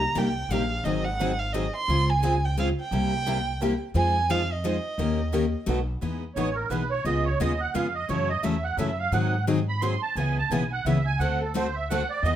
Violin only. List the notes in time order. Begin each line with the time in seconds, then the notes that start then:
Already playing: A#5
0.18 G5
0.52 F5
0.84 D#5
1.05 F#5
1.39 F5
1.53 D#5
1.76 C6
2.10 G#5
2.45 G5
2.59 F5
2.80 G5
3.97 G#5
4.30 F5
4.53 D#5